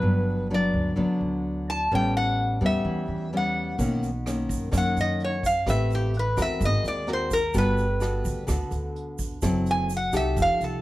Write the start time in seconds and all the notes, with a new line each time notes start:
Already playing: F#3 B3 D4 B4
0.02 G1 G2
0.50 F#3 B3 D4 D5
0.74 D2
0.96 D2 D3 F#3 B3 D4
1.21 D2
1.70 A5
1.92 A1 A2 G3 B3 C#4 G5
2.17 F#5
2.61 E2 G3 B3 C#4
2.66 E5
2.85 E2 E3
3.08 E2
3.33 G3 B3 C#4
3.37 F#5
3.78 B1 B2 D#3 A#3 C#4, kick, closed hi-hat, shaker
4.02 closed hi-hat, shaker
4.26 D#3 A#3 C#4, cross-stick, closed hi-hat, shaker
4.49 F#2, kick, closed hi-hat, shaker
4.71 F#2 D#3 A#3 C#4, kick, cross-stick, closed hi-hat, shaker
4.77 F#5
4.96 F#2, closed hi-hat, shaker
5.01 D#5
5.20 closed hi-hat
5.24 C#5
5.43 F5, kick, closed hi-hat, shaker
5.66 A1 A3 C4 G4 B4 E5, kick, cross-stick, closed hi-hat, shaker
5.90 closed hi-hat, shaker
5.95 G4
6.14 closed hi-hat
6.19 B4
6.37 E2 C4 F#4 A#4, kick, cross-stick, closed hi-hat, shaker
6.42 E5
6.60 G#1 G#3, kick, closed hi-hat, shaker
6.65 D#5
6.84 D#2 D5, closed hi-hat, shaker
7.07 C4 F#4 A#4, cross-stick, closed hi-hat
7.13 C5
7.31 A#4, kick, closed hi-hat, shaker
7.54 G1 G3 B3 F#4 A4, kick, closed hi-hat, shaker
7.58 B4
7.77 closed hi-hat, shaker
8.00 B3 F#4 A4, cross-stick, closed hi-hat, shaker
8.25 D2, kick, closed hi-hat, shaker
8.47 D2 D3 B3 F#4 A4, kick, cross-stick, closed hi-hat, shaker
8.71 D2, closed hi-hat, shaker
8.96 closed hi-hat
9.19 kick, closed hi-hat, shaker
9.42 F#1 F#3 C4 E4 A4, kick, cross-stick, closed hi-hat, shaker
9.66 closed hi-hat, shaker
9.71 G#5
9.89 closed hi-hat, shaker
9.97 F#5
10.13 C2 D#4 G4 A4 E5, cross-stick, closed hi-hat, shaker
10.36 F1 F3, kick, closed hi-hat, shaker
10.42 F5
10.60 C2 A4, closed hi-hat, shaker